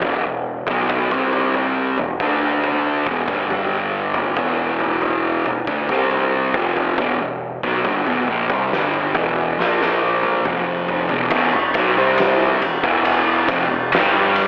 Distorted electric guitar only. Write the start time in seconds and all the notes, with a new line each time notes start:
0.04 E2 B2
0.26 E2 B2
0.70 B2 F#3 B3
1.12 C3 G3 C4
1.99 E2 B2
2.21 D3 A3 D4
3.08 E2 B2
3.30 G2 D3 G3
4.38 E2 B2 E3
5.47 E2 B2
5.68 D3 A3
5.91 C3 G3 C4
6.57 F2 C3 F3
6.99 E2 B2
7.22 E2 B2
7.65 B2 F#3
7.86 G2 D3
8.07 E2 B2
8.30 A#2 F3
8.51 C3 G3
8.73 G2 D3 G3
9.16 E2 B2 E3
9.60 A#2 F3 A#3
10.46 F2 C3 F3
11.11 E2 B2
11.34 E2 B2
11.55 E2 B2
11.77 B2 F#3
11.98 C3 G3 C4
12.62 E2 B2
12.83 E2 B2 E3
13.48 F2 C3
13.69 E2 B2
13.92 G2 D3 G3